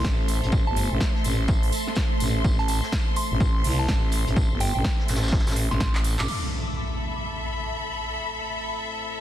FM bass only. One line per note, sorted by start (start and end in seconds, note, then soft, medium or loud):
0.04 0.41 A1 loud
0.43 0.65 A1 medium
0.67 0.89 G1 loud
0.91 0.99 A1 loud
1.24 1.71 A1 loud
2.20 2.43 A1 medium
2.44 2.81 A1 loud
3.31 3.63 A1 loud
3.64 3.87 C2 medium
3.88 4.25 A1 loud
4.27 4.49 A1 medium
4.51 4.73 G1 loud
4.75 4.83 A1 loud
5.08 5.45 A1 medium
5.47 5.69 A1 medium
5.71 6.17 A1 loud
6.19 6.27 A1 loud